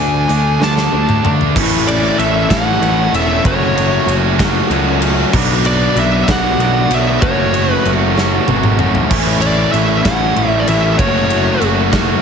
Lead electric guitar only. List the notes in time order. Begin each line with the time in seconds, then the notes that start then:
Already playing: G#5
0.64 A5
1.88 D5
2.19 E5
2.50 F#5
3.15 E5
3.47 C#5
5.66 D5
5.99 E5
6.31 F#5
6.94 E5
7.23 C#5
7.73 B4
9.41 D5
9.72 E5
10.05 F#5
10.49 E5
10.59 D5
10.69 E5
10.99 C#5